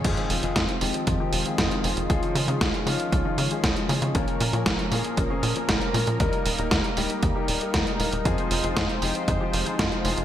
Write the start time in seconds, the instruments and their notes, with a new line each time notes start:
0.04 analog synth bass F2, analog synth pad D#3 G#3 C4 F4, grand piano F3 C4 D#4 G#4, kick, closed hi-hat, crash
0.17 closed hi-hat
0.30 analog synth bass F1, open hi-hat
0.43 analog synth bass F1, grand piano F3 C4 D#4 G#4, closed hi-hat
0.56 analog synth bass F2, kick, snare, closed hi-hat
0.69 closed hi-hat
0.81 analog synth bass F1, grand piano F3 C4 D#4 G4, open hi-hat
0.94 closed hi-hat
1.07 analog synth bass F2, kick, closed hi-hat
1.20 grand piano F3 C4 D#4 G4
1.33 analog synth bass F1, open hi-hat
1.46 grand piano F3 C4 D#4 G#4, closed hi-hat
1.58 analog synth bass F2, kick, snare, closed hi-hat
1.71 closed hi-hat
1.84 analog synth bass F1, grand piano F3 C4 D#4 G#4, open hi-hat
1.97 analog synth bass F1, closed hi-hat
2.10 analog synth bass C#2, grand piano F3 C#4 D#4 G#4, analog synth pad C#4, kick, closed hi-hat
2.23 closed hi-hat
2.35 analog synth bass C#3, open hi-hat
2.48 analog synth bass C#3, grand piano F3 C#4 D#4 G#4, closed hi-hat
2.61 analog synth bass C#2, kick, snare, closed hi-hat
2.74 closed hi-hat
2.86 analog synth bass C#3, grand piano F3 C#4 D#4 F4, open hi-hat
3.00 closed hi-hat
3.12 analog synth bass C#2, kick, closed hi-hat
3.25 grand piano F3 C#4 D#4 F4
3.38 analog synth bass C#3, open hi-hat
3.51 grand piano F3 C#4 D#4 G#4, closed hi-hat
3.64 analog synth bass C#2, kick, snare, closed hi-hat
3.76 closed hi-hat
3.89 grand piano A#2 F3 C#4 D#4 G#4, analog synth bass C#3, open hi-hat
4.02 analog synth bass C#3, closed hi-hat
4.15 analog synth bass A#1, grand piano A#2 F3 A#3 C#4 A#4, analog synth pad F3 A#3 A#4, kick, closed hi-hat
4.28 closed hi-hat
4.41 analog synth bass A#2, open hi-hat
4.53 analog synth bass A#2, grand piano A#2 F3 A#3 C#4 A#4, closed hi-hat
4.66 analog synth bass A#1, kick, snare, closed hi-hat
4.79 closed hi-hat
4.92 analog synth bass A#2, grand piano A#2 F3 A#3 C#4 G#4, open hi-hat
5.04 closed hi-hat
5.17 analog synth bass A#1, kick, closed hi-hat
5.30 grand piano A#2 F3 A#3 C#4 G#4
5.43 analog synth bass A#2, open hi-hat
5.56 grand piano A#2 F3 A#3 C#4 A#4, closed hi-hat
5.69 analog synth bass A#1, kick, snare, closed hi-hat
5.81 closed hi-hat
5.94 analog synth bass A#2, grand piano F3 A#3 C#4 A#4, open hi-hat
6.07 analog synth bass A#2, closed hi-hat
6.20 analog synth bass D#2, analog synth pad G3 A#3 D#4, grand piano G3 A#3 D#4 A#4, kick, closed hi-hat
6.33 closed hi-hat
6.46 analog synth bass D#1, open hi-hat
6.58 analog synth bass D#1, grand piano G3 A#3 D#4 A#4, closed hi-hat
6.71 analog synth bass D#2, kick, snare, closed hi-hat
6.84 closed hi-hat
6.97 analog synth bass D#1, grand piano G3 A#3 D#4 G4, open hi-hat
7.10 closed hi-hat
7.23 analog synth bass D#2, kick, closed hi-hat
7.36 grand piano G3 A#3 D#4 G4
7.48 analog synth bass D#1, open hi-hat
7.61 grand piano G3 A#3 D#4 A#4, closed hi-hat
7.74 analog synth bass D#2, kick, snare, closed hi-hat
7.87 closed hi-hat
7.99 analog synth bass D#1, grand piano G3 A#3 D#4 A#4, open hi-hat
8.12 analog synth bass D#1, closed hi-hat
8.25 analog synth bass F2, grand piano F3 C4 D#4 G#4, analog synth pad G#3 F4 C5, kick, closed hi-hat
8.38 closed hi-hat
8.51 analog synth bass F1, open hi-hat
8.64 analog synth bass F1, grand piano F3 C4 D#4 G#4, closed hi-hat
8.77 analog synth bass F2, kick, snare, closed hi-hat
8.89 closed hi-hat
9.02 analog synth bass F1, grand piano F3 C4 D#4 G4, open hi-hat
9.15 closed hi-hat
9.28 analog synth bass F2, kick, closed hi-hat
9.41 grand piano F3 C4 D#4 G4
9.53 analog synth bass F1, open hi-hat
9.66 grand piano F3 C4 D#4 G#4, closed hi-hat
9.79 analog synth bass F2, kick, snare, closed hi-hat
9.92 closed hi-hat
10.05 analog synth bass F1, grand piano F3 C4 D#4 G#4, open hi-hat
10.17 analog synth bass F1, closed hi-hat